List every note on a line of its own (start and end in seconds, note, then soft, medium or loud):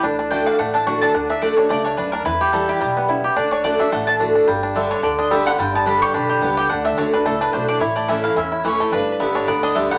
0.03 0.47 D2 medium
0.03 0.29 D3 medium
0.03 0.18 D4 medium
0.19 0.45 D4 medium
0.30 0.57 D3 medium
0.30 0.58 A3 medium
0.30 0.58 D4 medium
0.30 0.58 F#4 loud
0.30 0.46 G5 medium
0.46 0.73 D4 medium
0.46 0.58 F5 medium
0.59 1.03 A1 medium
0.59 1.12 A2 medium
0.59 0.99 A3 medium
0.59 0.73 F#5 medium
0.74 0.86 D4 medium
0.74 0.86 A5 medium
0.86 1.13 D3 medium
0.86 1.13 A3 medium
0.86 1.01 D4 medium
0.86 1.14 D4 medium
0.86 1.14 F#4 medium
0.86 1.01 C#6 loud
1.01 1.14 D4 medium
1.01 1.14 A5 medium
1.14 1.58 D2 medium
1.14 1.40 D3 medium
1.14 1.29 D4 medium
1.14 1.29 F#5 medium
1.30 1.57 D4 medium
1.30 1.42 E5 medium
1.41 1.57 D3 medium
1.41 1.57 A3 medium
1.41 1.69 A3 medium
1.41 1.57 D4 loud
1.41 1.56 F#4 medium
1.41 1.56 D5 medium
1.57 1.84 D4 medium
1.57 1.70 D4 soft
1.57 1.69 F#4 medium
1.57 1.69 C#5 medium
1.69 1.94 C#2 medium
1.69 1.96 G2 medium
1.69 2.10 A3 medium
1.69 1.84 D5 medium
1.84 1.97 D4 medium
1.84 1.97 C#5 medium
1.97 2.22 D2 medium
1.97 2.24 F#2 medium
1.97 2.12 D4 medium
1.97 2.12 B4 medium
2.12 2.25 D4 medium
2.12 2.25 A#4 medium
2.25 2.78 E2 medium
2.25 2.69 E2 medium
2.25 2.66 E4 medium
2.25 2.51 B4 loud
2.41 2.79 G4 medium
2.52 2.79 E3 medium
2.52 2.80 G3 medium
2.52 2.80 B3 loud
2.52 2.80 E4 medium
2.52 2.68 A4 medium
2.69 3.07 E4 medium
2.69 3.06 G4 medium
2.81 3.25 B1 medium
2.81 3.08 B2 medium
2.81 3.21 G3 medium
2.97 3.34 B3 medium
3.08 3.35 C#3 medium
3.08 3.36 E4 medium
3.24 3.37 G4 medium
3.36 3.81 D2 medium
3.36 3.62 D3 medium
3.36 3.51 D4 medium
3.36 3.51 D5 medium
3.51 3.79 D4 medium
3.51 3.64 C#5 medium
3.64 3.79 D3 medium
3.64 3.79 A3 medium
3.64 3.91 A3 medium
3.64 3.79 D4 medium
3.64 3.78 F#4 loud
3.64 3.79 D5 medium
3.79 4.06 D4 medium
3.79 3.92 D4 medium
3.79 3.91 F#4 medium
3.79 3.92 E5 medium
3.92 4.36 A1 medium
3.92 4.45 A2 medium
3.92 4.32 A3 medium
3.92 4.06 F#5 medium
4.07 4.19 D4 medium
4.07 4.15 A5 loud
4.19 4.46 D3 medium
4.19 4.46 A3 medium
4.19 4.34 D4 medium
4.19 4.47 D4 medium
4.19 4.47 F#4 medium
4.35 4.48 D4 medium
4.47 4.92 G1 medium
4.47 5.01 G2 medium
4.47 4.88 G3 medium
4.63 4.90 D4 medium
4.75 5.01 D3 medium
4.75 5.02 D3 medium
4.75 5.02 G3 medium
4.75 5.02 B3 medium
4.75 5.03 G4 loud
4.75 4.91 E5 medium
4.91 5.18 D4 medium
4.91 5.03 C#5 medium
5.03 5.47 D2 medium
5.03 5.28 D3 medium
5.03 5.43 D3 medium
5.03 5.18 D5 medium
5.18 5.86 D4 medium
5.18 5.31 D#5 medium
5.30 5.45 D3 medium
5.30 5.45 G3 loud
5.30 5.58 G3 medium
5.30 5.46 B3 loud
5.30 5.45 G4 medium
5.30 5.46 E5 medium
5.46 5.84 D3 medium
5.46 5.59 B3 medium
5.46 5.58 G4 medium
5.46 5.59 F#5 loud
5.58 6.03 G1 medium
5.58 6.11 G2 medium
5.58 5.99 G3 medium
5.58 5.74 G5 medium
5.74 6.12 B3 medium
5.74 5.87 A5 medium
5.85 6.12 D3 medium
5.85 6.13 G3 medium
5.85 6.13 B3 medium
5.85 6.13 D4 medium
5.85 6.13 G4 loud
5.85 6.02 B5 medium
6.02 6.28 G4 medium
6.02 6.14 C#6 loud
6.14 6.38 B1 medium
6.14 6.40 D3 medium
6.14 6.54 D4 medium
6.14 6.55 B5 medium
6.29 6.56 G4 medium
6.41 6.66 C#2 medium
6.41 6.68 D3 medium
6.41 6.68 G3 medium
6.41 6.70 B3 medium
6.41 6.69 B3 loud
6.41 6.69 G4 loud
6.57 6.70 G4 medium
6.57 6.69 G5 medium
6.69 6.92 D2 medium
6.69 6.96 D3 medium
6.69 6.96 D4 medium
6.69 6.84 F#5 medium
6.85 7.23 A3 medium
6.85 6.97 E5 medium
6.97 7.21 D2 medium
6.97 7.12 D3 medium
6.97 7.12 A3 medium
6.97 7.12 D4 medium
6.97 7.12 D4 loud
6.97 7.11 F#4 medium
6.97 7.13 C#5 medium
7.12 7.40 D4 medium
7.12 7.25 D4 soft
7.12 7.25 F#4 medium
7.12 7.25 B4 medium
7.25 7.49 C#2 medium
7.25 7.78 A2 medium
7.25 7.66 A3 medium
7.25 7.41 A4 medium
7.41 7.52 D4 medium
7.41 7.53 B4 medium
7.52 7.77 B1 medium
7.52 7.79 D3 medium
7.52 7.80 A3 medium
7.52 7.67 D4 medium
7.52 7.80 D4 medium
7.52 7.80 F#4 medium
7.52 7.68 C5 medium
7.68 7.81 D4 medium
7.68 7.80 D5 loud
7.80 8.25 A1 medium
7.80 8.34 A2 medium
7.80 8.21 E4 medium
7.80 7.95 C#5 medium
7.96 8.34 A3 medium
7.96 8.08 D5 medium
8.08 8.35 E3 medium
8.08 8.35 A3 medium
8.08 8.35 C#4 medium
8.08 8.36 C#4 medium
8.08 8.36 E4 medium
8.08 8.23 E5 medium
8.24 8.51 E4 medium
8.24 8.36 F5 loud
8.36 8.89 E2 medium
8.36 8.80 E2 medium
8.36 8.77 C#4 medium
8.36 8.77 E5 medium
8.52 8.90 E4 medium
8.64 8.91 E3 medium
8.64 8.92 E3 medium
8.64 8.91 A3 medium
8.64 8.91 C#4 loud
8.64 8.91 E4 medium
8.64 8.90 C#5 medium
8.80 8.92 A3 medium
8.92 9.36 G1 medium
8.92 9.45 G2 medium
8.92 9.33 D4 medium
8.92 9.12 B4 medium
9.19 9.46 D3 medium
9.19 9.47 G3 medium
9.19 9.47 B3 medium
9.19 9.47 G4 loud
9.19 9.35 E5 medium
9.35 9.62 D4 medium
9.35 9.47 C#5 medium
9.47 9.92 D2 medium
9.47 9.73 D3 medium
9.47 9.88 B3 medium
9.47 9.63 D5 medium
9.63 9.98 D4 medium
9.63 9.75 D#5 medium
9.74 9.90 D3 medium
9.74 9.98 D3 medium
9.74 9.90 G3 medium
9.74 9.90 B3 medium
9.74 9.89 G4 loud
9.74 9.90 E5 medium
9.90 9.98 G3 medium
9.90 9.98 B3 medium
9.90 9.98 G4 medium
9.90 9.98 F#5 loud